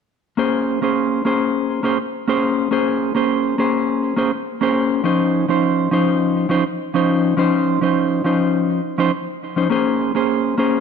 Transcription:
clean electric guitar
0.37 A#3 C#4 G#4 C5
0.82 A#3 C#4 G#4 C5
1.25 A#3 C#4 G#4 C5
1.83 A#3 C#4 G#4 C5
2.28 A#3 C#4 G#4 C5
2.71 A#3 C#4 G#4 C5
3.15 A#3 C#4 G#4 C5
3.58 A#3 C#4 G#4 C5
4.16 A#3 C#4 G#4 C5
4.61 A#3 C#4 G#4 C5
5.04 F3 C#4 D#4 C5
5.48 F3 C#4 D#4 C5
5.91 F3 C#4 D#4 C5
6.49 F3 C#4 D#4 C5
6.94 F3 C#4 D#4 C5
7.37 F3 C#4 D#4 C5
7.81 F3 C#4 D#4 C5
8.24 F3 C#4 D#4 C5
8.98 F3 C#4 D#4 C5
9.56 F3 C#4 D#4 C5
9.70 A#3 C#4 G#4 C5
10.15 A#3 C#4 G#4 C5
10.58 A#3 C#4 G#4 C5

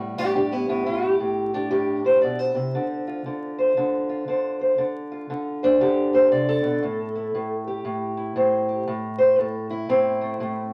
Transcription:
steel-string acoustic guitar
Already playing: A2 B3
0.00 G3
0.18 A2 D4 G4
0.35 D4 G4
0.52 B3 E4
0.69 A2 B3 E4
0.86 G4
1.02 E4
1.20 A2
1.54 D4 G4
1.71 A2 G4
2.04 E4 C5
2.22 B2 D5
2.39 C5
2.55 C3
2.75 D3
3.08 F4
3.26 D3
3.58 C5
3.77 D3
4.09 F4
4.28 D3 C5
4.61 C5
4.78 D3
5.12 F4
5.30 D3
5.63 D4 C5
5.81 D3 G4
6.13 D4 C5
6.32 C3 D5
6.49 A4
6.63 B2
6.83 A2
7.16 E4
7.35 A2
7.67 G4
7.85 A2
8.17 E4
8.36 A2 C5
8.69 G4
8.87 A2
9.18 C5
9.39 A2 A4
9.70 E4
9.89 A2 C4
10.21 A3
10.40 A2 A3

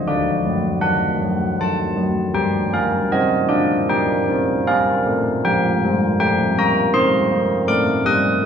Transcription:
church bells
0.08 D3 F#4 D5
0.46 F#3
0.81 D#3 F#5
1.22 F#3
1.59 D#3 A5
1.97 F#3
2.34 G3 G4 G5
2.73 A#3 F5
3.12 C4 D#5
3.49 D4 D5
3.89 A#3 G5
4.29 C4
4.67 A#3 G4 F5
5.07 A3
5.45 F3 G5
5.85 G3
6.20 A3 G5
6.58 A#3 A#5
6.93 C4 G4 C6
7.32 A#3
7.67 A3 D6
8.06 G3 D#6

